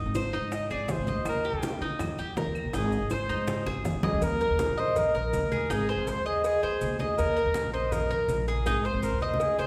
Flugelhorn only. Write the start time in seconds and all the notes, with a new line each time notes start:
0.55 D#5
0.72 D5
0.91 C5
1.29 A#4
2.77 G#4
3.14 C5
4.04 G#4
4.23 A#4
4.80 C5
4.98 A#4
5.71 G#4
5.90 G#4
6.09 C5
6.27 G#4
6.45 G#4
7.00 G#4
7.18 A#4
7.73 C5
7.92 A#4
8.66 G#4
8.85 C5
9.03 A#4
9.22 C5
9.41 G#4